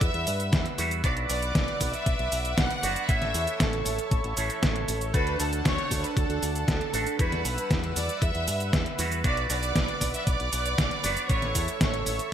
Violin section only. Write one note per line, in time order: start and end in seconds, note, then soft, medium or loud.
0.02 0.53 E5 loud
0.02 0.53 E6 medium
1.04 1.15 D5 loud
1.04 1.16 D6 medium
1.29 1.90 D5 loud
1.29 1.90 D6 medium
1.94 2.58 E5 loud
1.94 2.58 E6 medium
2.58 3.09 F#5 loud
2.58 3.09 F#6 medium
3.09 3.60 E5 loud
3.09 3.61 E6 medium
3.60 4.37 A4 medium
3.60 4.38 A5 medium
5.14 5.38 B4 loud
5.14 5.38 B5 medium
5.40 5.51 A4 medium
5.40 5.52 A5 medium
5.65 6.01 C#5 loud
5.65 6.02 C#6 medium
6.04 6.17 B4 loud
6.04 6.17 B5 medium
6.17 6.52 A4 loud
6.17 6.53 A5 medium
6.55 7.15 A4 medium
6.55 7.16 A5 medium
7.19 7.70 B4 loud
7.19 7.71 B5 medium
7.96 8.20 D5 loud
7.96 8.21 D6 medium
8.22 8.73 E5 loud
8.22 8.74 E6 medium
9.24 9.48 D5 loud
9.24 9.49 D6 medium
9.50 10.10 D5 loud
9.50 10.10 D6 medium
10.14 10.27 E5 loud
10.14 10.27 E6 medium
10.27 11.26 D5 loud
10.27 11.26 D6 medium
11.30 11.80 C#5 loud
11.30 11.81 C#6 medium
11.81 12.29 C#5 medium
11.81 12.29 C#6 medium